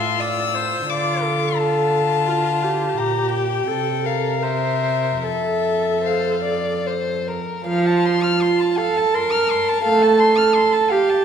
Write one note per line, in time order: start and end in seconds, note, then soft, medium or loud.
0.00 0.85 A2 soft
0.00 0.84 F4 soft
0.00 0.21 E5 soft
0.00 0.22 C6 medium
0.20 0.56 D5 soft
0.20 0.91 E6 medium
0.55 0.89 C5 soft
0.89 2.94 D3 soft
0.89 1.57 F4 soft
0.89 1.25 D5 medium
0.89 1.59 D6 medium
1.24 2.29 A4 medium
1.58 3.00 F4 soft
1.58 2.99 A5 medium
2.28 2.65 F4 soft
2.63 3.69 G4 soft
2.98 3.67 A#2 soft
2.98 3.69 G4 soft
2.98 3.32 A#5 medium
3.33 4.07 G5 medium
3.68 5.20 C3 soft
3.68 4.06 A4 soft
3.68 4.41 A4 soft
4.05 4.43 A#4 soft
4.05 4.44 F5 soft
4.42 5.25 A#4 soft
4.42 5.25 C5 soft
4.42 5.23 E5 soft
5.23 7.42 F2 soft
5.23 7.27 A4 soft
5.23 6.03 A4 soft
5.23 6.07 E5 medium
6.04 6.42 C5 soft
6.04 6.87 F5 soft
6.44 6.88 D5 soft
6.86 7.29 C5 soft
7.28 7.66 A#4 soft
7.66 8.29 F3 medium
7.66 8.79 F4 medium
7.66 7.88 F5 medium
7.66 11.25 A5 medium
7.86 8.07 A5 soft
8.06 8.24 C6 medium
8.23 8.43 F6 soft
8.41 8.62 C6 medium
8.60 8.79 A5 soft
8.77 9.15 A4 medium
8.77 8.98 F5 medium
8.96 9.16 A5 soft
9.14 9.84 A#4 medium
9.14 9.33 C6 medium
9.31 9.52 F6 soft
9.51 9.70 C6 medium
9.68 9.84 A5 medium
9.85 10.44 A3 medium
9.85 10.93 A4 medium
9.85 10.03 F5 medium
10.02 10.21 A5 soft
10.20 10.38 C6 medium
10.37 10.56 F6 soft
10.55 10.74 C6 medium
10.73 10.92 A5 soft
10.90 11.25 G4 medium
10.90 11.11 F5 medium
11.09 11.25 A5 medium